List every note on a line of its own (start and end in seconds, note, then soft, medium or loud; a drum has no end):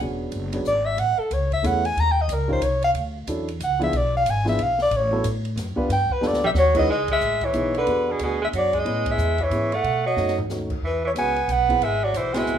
0.00 0.31 E1 medium
0.00 0.48 F#3 medium
0.00 0.49 B3 medium
0.00 0.49 C#4 soft
0.00 0.49 D4 soft
0.00 0.49 G#4 medium
0.32 0.64 F#1 medium
0.32 ride medium
0.53 0.64 F#3 medium
0.53 0.64 B3 medium
0.53 0.64 C#4 medium
0.53 0.64 D4 medium
0.53 0.65 G#4 medium
0.53 ride medium
0.65 0.97 G#1 medium
0.65 0.87 D5 medium
0.65 hi-hat pedal medium
0.86 1.01 E5 medium
0.97 1.16 A1 medium
0.97 1.21 F#5 loud
0.97 ride medium
1.18 1.35 A4 medium
1.18 muted upright bass stroke soft
1.30 1.62 C#2 medium
1.30 1.52 C#5 medium
1.30 hi-hat pedal medium
1.30 ride medium
1.51 1.68 E5 medium
1.51 kick medium
1.51 ride soft
1.63 1.95 E2 medium
1.63 1.81 A3 medium
1.63 1.82 B3 medium
1.63 1.82 C#4 medium
1.63 1.82 E4 medium
1.63 1.82 G#4 medium
1.63 1.87 F#5 medium
1.63 hi-hat pedal medium
1.63 ride medium
1.85 2.01 G#5 loud
1.85 ride soft
1.97 2.27 D#2 medium
1.97 2.13 A#5 loud
1.97 ride medium
2.12 2.23 G5 medium
2.21 2.35 D#5 medium
2.28 2.60 C#2 medium
2.28 hi-hat pedal medium
2.28 ride medium
2.33 2.52 A#4 medium
2.48 2.60 G3 medium
2.48 2.60 C#4 medium
2.48 2.60 D#4 medium
2.48 2.60 F4 medium
2.48 2.61 A#4 medium
2.48 kick medium
2.53 2.65 C5 medium
2.60 2.93 C2 medium
2.60 2.83 C#5 medium
2.60 hi-hat pedal medium
2.60 ride medium
2.82 2.91 F5 loud
2.82 ride medium
2.93 3.26 D2 medium
2.93 ride medium
3.27 3.59 E2 medium
3.27 3.46 F#3 medium
3.27 3.46 C#4 medium
3.27 3.46 D4 medium
3.27 3.46 E4 medium
3.27 3.46 A4 medium
3.27 hi-hat pedal medium
3.27 ride medium
3.48 ride soft
3.60 3.92 C#2 medium
3.60 hi-hat pedal medium
3.60 ride medium
3.64 3.81 F#5 medium
3.79 3.91 F3 medium
3.79 3.91 B3 medium
3.79 3.91 D4 medium
3.79 3.92 E4 medium
3.79 3.92 G#4 medium
3.79 ride soft
3.83 3.98 E5 medium
3.92 4.24 B1 medium
3.92 ride medium
3.97 4.15 D5 medium
4.17 4.32 F5 medium
4.26 4.58 G#1 medium
4.26 hi-hat pedal medium
4.26 ride medium
4.30 4.48 G#5 loud
4.45 4.56 F3 medium
4.45 4.56 B3 medium
4.45 4.57 D4 medium
4.45 4.57 E4 medium
4.45 4.57 G#4 medium
4.45 snare soft
4.49 4.64 E5 medium
4.58 4.90 B1 loud
4.58 ride medium
4.63 4.81 F5 loud
4.78 4.98 D5 loud
4.78 snare soft
4.91 5.23 A1 medium
4.91 ride medium
4.96 5.26 C#5 medium
5.11 5.22 F#3 medium
5.11 5.23 B3 medium
5.11 5.22 C#4 medium
5.11 5.23 E4 medium
5.11 5.23 A4 medium
5.24 5.55 A2 medium
5.24 hi-hat pedal medium
5.24 ride medium
5.45 ride soft
5.56 5.75 F#2 loud
5.56 snare soft
5.56 hi-hat pedal medium
5.56 ride medium
5.76 5.88 G3 medium
5.76 5.87 B3 medium
5.76 5.88 D4 medium
5.76 5.88 F4 medium
5.76 5.88 B4 medium
5.76 muted upright bass stroke soft
5.76 kick medium
5.89 6.08 G2 medium
5.89 6.14 G5 medium
5.89 snare soft
5.89 ride medium
6.10 6.29 B4 medium
6.10 muted upright bass stroke soft
6.10 kick medium
6.21 6.32 F2 medium
6.21 6.40 G3 medium
6.21 6.40 B3 medium
6.21 6.40 D4 medium
6.21 6.40 F4 medium
6.21 6.41 A4 medium
6.21 snare medium
6.27 6.45 D5 medium
6.32 6.43 D2 medium
6.32 snare medium
6.43 6.53 B1 medium
6.43 6.49 G3 medium
6.43 6.51 E5 medium
6.43 mid tom medium
6.54 6.86 D#2 medium
6.54 6.75 F#3 medium
6.54 snare medium
6.54 hi-hat pedal medium
6.59 6.76 C#5 medium
6.74 6.87 F#3 medium
6.74 6.86 G#3 medium
6.74 6.86 C#4 medium
6.74 6.86 D#4 medium
6.74 6.86 E4 medium
6.74 6.87 B4 medium
6.74 kick medium
6.74 crash medium
6.79 6.89 D#5 medium
6.87 7.19 C#2 medium
6.87 7.08 G#3 medium
6.92 7.09 D#5 medium
7.08 7.45 G#3 medium
7.08 kick medium
7.08 ride medium
7.13 7.47 E5 medium
7.21 7.52 A1 medium
7.21 hi-hat pedal medium
7.41 7.75 E3 medium
7.41 kick soft
7.41 ride soft
7.45 7.76 C#5 medium
7.53 7.86 B1 medium
7.53 7.72 B3 medium
7.53 7.72 D#4 medium
7.53 7.72 E4 medium
7.53 7.72 G#4 medium
7.53 hi-hat pedal soft
7.53 ride medium
7.74 8.11 D3 medium
7.74 ride soft
7.79 8.13 B4 medium
7.86 8.18 E2 medium
7.86 8.77 B3 medium
7.86 8.77 D4 medium
7.86 8.78 F#4 medium
7.86 8.78 G#4 medium
7.86 ride medium
8.10 8.21 B2 medium
8.10 8.22 G#4 medium
8.19 8.51 D2 medium
8.19 8.40 B2 medium
8.19 hi-hat pedal soft
8.19 ride medium
8.25 8.41 G#4 medium
8.42 8.47 G#3 medium
8.42 8.49 E5 medium
8.53 8.84 F#2 medium
8.53 8.76 F#3 medium
8.53 hi-hat pedal soft
8.53 ride medium
8.58 8.81 D5 medium
8.73 9.09 G#3 medium
8.73 kick soft
8.73 ride soft
8.79 9.13 D#5 medium
8.85 9.17 A2 medium
8.85 9.34 B3 medium
8.85 9.34 C#4 medium
8.85 9.34 E4 medium
8.85 9.35 G#4 medium
8.85 ride medium
9.06 9.43 G#3 medium
9.06 kick medium
9.06 ride medium
9.11 9.44 E5 medium
9.18 9.50 E2 medium
9.18 hi-hat pedal medium
9.38 9.74 E3 medium
9.38 kick soft
9.38 ride soft
9.43 9.77 C#5 medium
9.50 9.82 G#2 medium
9.50 9.69 B3 medium
9.50 9.69 C#4 soft
9.50 9.70 E4 medium
9.50 9.70 G#4 medium
9.50 hi-hat pedal soft
9.50 ride medium
9.72 10.05 A3 medium
9.72 10.06 F#5 medium
9.72 ride soft
9.84 10.16 B2 medium
9.84 ride soft
10.06 10.36 F#3 medium
10.06 10.36 D#5 medium
10.16 10.48 F#2 medium
10.16 10.35 A3 medium
10.16 10.35 C#4 soft
10.16 10.35 D#4 soft
10.16 10.36 F#4 medium
10.16 snare soft
10.28 snare soft
10.38 floor tom medium
10.49 10.81 D#2 medium
10.49 10.68 A3 soft
10.49 10.68 C#4 soft
10.49 10.69 D#4 soft
10.49 10.69 F#4 medium
10.49 snare soft
10.49 hi-hat pedal medium
10.70 kick medium
10.70 crash medium
10.82 11.13 E2 medium
10.82 11.02 E3 medium
10.87 11.04 B4 medium
11.05 11.10 E3 medium
11.05 11.12 C#5 medium
11.14 11.46 C#2 medium
11.14 11.33 G#3 medium
11.14 11.34 B3 soft
11.14 11.34 C#4 soft
11.14 11.34 F#4 medium
11.14 hi-hat pedal medium
11.14 ride medium
11.18 11.50 B3 medium
11.18 11.54 G#5 medium
11.36 ride soft
11.47 11.80 B1 medium
11.47 11.86 B3 medium
11.47 hi-hat pedal soft
11.47 ride medium
11.52 11.85 F#5 medium
11.68 11.80 B3 medium
11.68 11.80 C4 medium
11.68 11.80 E4 medium
11.68 11.80 G#4 medium
11.68 kick medium
11.68 ride soft
11.81 12.13 G#1 medium
11.81 12.06 G#3 medium
11.81 12.05 E5 medium
11.81 ride medium
12.04 12.19 F#3 medium
12.04 12.18 D5 medium
12.13 12.45 B1 medium
12.13 12.35 E3 medium
12.13 12.39 C5 medium
12.13 hi-hat pedal medium
12.13 ride medium
12.34 12.58 G#3 medium
12.34 12.58 B3 medium
12.34 12.58 C4 medium
12.34 12.58 E4 medium
12.34 12.58 F#4 medium
12.34 12.58 E5 medium
12.34 snare medium
12.34 ride medium
12.46 12.58 C2 medium
12.46 hi-hat pedal medium